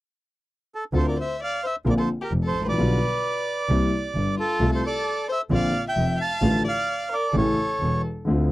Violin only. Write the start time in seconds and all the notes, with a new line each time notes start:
0.94 A4
1.06 A#4
1.19 C5
1.43 D5
1.64 C5
1.87 A#4
1.98 A4
2.21 G4
2.43 A4
2.67 B4
4.38 F4
4.72 A4
4.84 A4
5.29 C5
5.53 D5
5.87 E5
6.18 F5
6.65 D5
7.12 A#4
7.33 A4